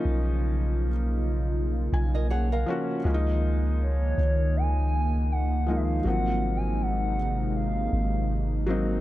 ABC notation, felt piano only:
X:1
M:4/4
L:1/16
Q:"Swing 16ths" 1/4=80
K:Db
V:1 name="Felt piano"
[F,B,DE]4 z6 a2 g f [F,B,DGd]2 | [F,A,B,DE]6 z8 [F,A,B,E]2 | [F,G,B,C]6 z8 [G,B,CE]2 |]